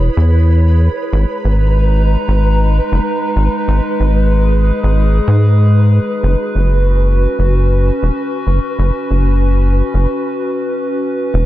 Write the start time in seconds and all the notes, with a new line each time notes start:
Already playing: E4 G#4 B4 C#5
0.17 E2
1.13 G#1 G#3 D#4 B4 A#5
1.44 G#1
2.28 G#1
2.92 F#1
3.36 G#1
3.68 G#1 G#4
4.00 G#1
4.83 G#1
5.27 G#2
6.23 F#1 C#4 F#4
6.55 F#1
7.39 F#1
8.03 E1
8.47 F#1
8.79 F#1
9.10 F#1
9.94 F#1
11.34 E1 C#4 E4 G#4